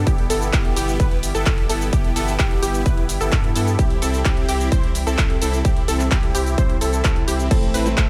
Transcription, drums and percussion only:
0.07 kick, closed hi-hat, cabasa
0.18 closed hi-hat
0.30 open hi-hat, cabasa
0.42 cabasa
0.53 kick, clap, closed hi-hat, cabasa
0.65 closed hi-hat
0.76 open hi-hat, cabasa
0.88 closed hi-hat, cabasa
1.00 kick, closed hi-hat, cabasa
1.11 closed hi-hat
1.23 open hi-hat, cabasa
1.35 closed hi-hat, cabasa
1.46 kick, clap, closed hi-hat, cabasa
1.58 closed hi-hat
1.69 open hi-hat, cabasa
1.81 closed hi-hat, cabasa
1.93 kick, closed hi-hat, cabasa
2.04 closed hi-hat
2.16 open hi-hat, cabasa
2.28 cabasa
2.39 kick, clap, closed hi-hat, cabasa
2.51 closed hi-hat
2.63 open hi-hat, cabasa
2.74 closed hi-hat, cabasa
2.86 kick, closed hi-hat, cabasa
2.97 closed hi-hat
3.09 open hi-hat, cabasa
3.21 closed hi-hat, cabasa
3.32 kick, clap, closed hi-hat, cabasa
3.44 closed hi-hat
3.56 open hi-hat, cabasa
3.67 closed hi-hat, cabasa
3.79 kick, closed hi-hat, cabasa
3.90 closed hi-hat
4.02 open hi-hat, cabasa
4.14 closed hi-hat, cabasa
4.25 kick, clap, closed hi-hat, cabasa
4.37 closed hi-hat
4.49 open hi-hat, cabasa
4.60 closed hi-hat, cabasa
4.72 kick, closed hi-hat, cabasa
4.83 closed hi-hat
4.95 open hi-hat, cabasa
5.07 closed hi-hat, cabasa
5.18 kick, clap, closed hi-hat, cabasa
5.30 closed hi-hat
5.42 open hi-hat, cabasa
5.53 closed hi-hat, cabasa
5.65 kick, closed hi-hat, cabasa
5.77 closed hi-hat
5.88 open hi-hat, cabasa
6.00 clap, closed hi-hat, cabasa
6.11 kick, clap, closed hi-hat, cabasa
6.23 closed hi-hat
6.35 open hi-hat, cabasa
6.46 closed hi-hat, cabasa
6.58 kick, closed hi-hat, cabasa
6.70 closed hi-hat
6.81 open hi-hat, cabasa
6.93 closed hi-hat, cabasa
7.04 kick, clap, closed hi-hat, cabasa
7.16 closed hi-hat
7.28 open hi-hat, cabasa
7.39 closed hi-hat, cabasa
7.51 kick, closed hi-hat, crash, cabasa
7.63 closed hi-hat
7.74 open hi-hat, cabasa
7.86 closed hi-hat, cabasa
7.97 kick, clap, closed hi-hat, cabasa

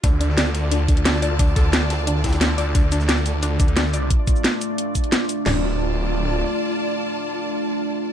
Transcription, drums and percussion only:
0.03 kick, closed hi-hat
0.21 closed hi-hat
0.30 snare
0.38 snare, closed hi-hat
0.46 closed hi-hat
0.55 closed hi-hat
0.71 closed hi-hat
0.88 kick, closed hi-hat
0.97 closed hi-hat
1.05 snare, closed hi-hat
1.14 closed hi-hat
1.22 closed hi-hat, open hi-hat
1.39 kick, closed hi-hat
1.56 kick, snare, closed hi-hat
1.73 snare, closed hi-hat
1.81 snare
1.90 snare, closed hi-hat
1.99 closed hi-hat
2.07 closed hi-hat
2.15 snare
2.24 kick, snare, closed hi-hat
2.28 snare, closed hi-hat
2.33 snare, closed hi-hat
2.41 snare, closed hi-hat
2.50 snare
2.58 closed hi-hat, open hi-hat
2.75 kick, closed hi-hat
2.92 closed hi-hat, shaker
3.00 snare, shaker
3.09 snare, closed hi-hat
3.18 closed hi-hat
3.26 closed hi-hat, shaker
3.42 closed hi-hat
3.60 kick, closed hi-hat, shaker
3.68 closed hi-hat
3.77 snare, closed hi-hat, shaker
3.86 closed hi-hat
3.94 closed hi-hat, open hi-hat, shaker
4.10 kick, closed hi-hat
4.27 kick, closed hi-hat, shaker
4.36 shaker
4.44 snare, closed hi-hat
4.61 closed hi-hat, shaker
4.78 closed hi-hat
4.95 kick, closed hi-hat, shaker
5.04 closed hi-hat
5.12 snare, closed hi-hat, shaker
5.29 open hi-hat, shaker
5.46 snare, floor tom, crash

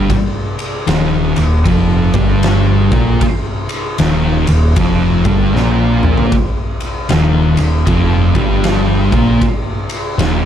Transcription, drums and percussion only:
0.10 kick, ride
0.59 ride
0.88 snare, ride
1.36 ride
1.65 kick, ride
2.14 kick, ride
2.43 snare, ride
2.92 kick, ride
3.21 kick, ride
3.69 ride
3.98 snare, ride
4.47 ride
4.76 kick, ride
5.25 kick, ride
5.56 snare
6.03 mid tom
6.18 floor tom
6.32 kick, ride
6.80 ride
7.09 snare, ride
7.57 ride
7.87 kick, ride
8.35 kick, ride
8.64 snare, ride
9.12 kick, ride
9.42 kick, ride
9.90 ride
10.19 snare, ride

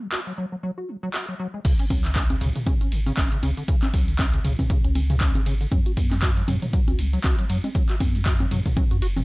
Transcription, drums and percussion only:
0.12 clap
1.14 clap
1.65 kick, closed hi-hat, crash, ride, shaker
1.79 closed hi-hat, shaker
1.90 kick, open hi-hat, ride, high conga
2.05 clap, closed hi-hat, shaker
2.16 kick, clap, closed hi-hat, ride, shaker
2.30 closed hi-hat, high conga, shaker
2.41 mid tom, open hi-hat, ride
2.56 closed hi-hat, mid tom, shaker
2.67 kick, closed hi-hat, ride, high conga, shaker
2.81 closed hi-hat, shaker
2.92 open hi-hat, ride
3.06 closed hi-hat, high conga, shaker
3.17 kick, clap, closed hi-hat, ride, shaker
3.32 closed hi-hat, shaker
3.43 open hi-hat, ride, high conga
3.57 closed hi-hat, shaker
3.68 kick, closed hi-hat, ride, shaker
3.83 clap, closed hi-hat, high conga, shaker
3.94 kick, open hi-hat, ride
4.08 closed hi-hat, shaker
4.19 kick, clap, closed hi-hat, ride, high conga, shaker
4.34 closed hi-hat, shaker
4.45 mid tom, open hi-hat, ride
4.59 kick, closed hi-hat, mid tom, high conga, shaker
4.70 kick, closed hi-hat, ride, shaker
4.84 closed hi-hat, shaker
4.95 open hi-hat, ride, high conga
5.10 closed hi-hat, mid tom, shaker
5.21 kick, clap, closed hi-hat, ride, shaker
5.35 closed hi-hat, high conga, shaker
5.46 open hi-hat, ride
5.61 closed hi-hat, shaker
5.72 kick, closed hi-hat, ride, high conga, shaker
5.86 closed hi-hat, shaker
5.97 kick, open hi-hat, ride
6.11 clap, closed hi-hat, high conga, shaker
6.22 kick, clap, closed hi-hat, ride, shaker
6.37 closed hi-hat, shaker
6.48 mid tom, open hi-hat, ride, high conga
6.62 closed hi-hat, mid tom, shaker
6.73 kick, closed hi-hat, ride, shaker
6.88 closed hi-hat, high conga, shaker
6.99 open hi-hat, ride
7.13 closed hi-hat, shaker
7.24 kick, clap, closed hi-hat, ride, high conga, shaker
7.39 closed hi-hat, shaker
7.50 open hi-hat, ride
7.64 closed hi-hat, high conga, shaker
7.75 kick, closed hi-hat, ride, shaker
7.89 clap, closed hi-hat, shaker
8.00 kick, open hi-hat, ride, high conga
8.15 closed hi-hat, shaker
8.26 kick, clap, closed hi-hat, ride, shaker
8.40 closed hi-hat, high conga, shaker
8.51 mid tom, open hi-hat, ride
8.66 kick, closed hi-hat, mid tom, shaker
8.77 kick, closed hi-hat, ride, high conga, shaker
8.91 closed hi-hat, shaker
9.02 open hi-hat, ride
9.17 closed hi-hat, mid tom, high conga, shaker

